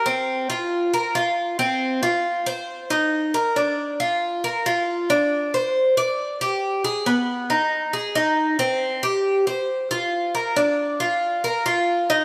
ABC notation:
X:1
M:4/4
L:1/8
Q:1/4=137
K:Bbmix
V:1 name="Cuban tres"
C2 F2 B F2 C- | C F2 c2 E2 B | D2 F2 B F2 D- | D c2 d2 G2 A |
_C2 E2 A E2 =C- | C G2 c2 F2 B | D2 F2 B F2 E |]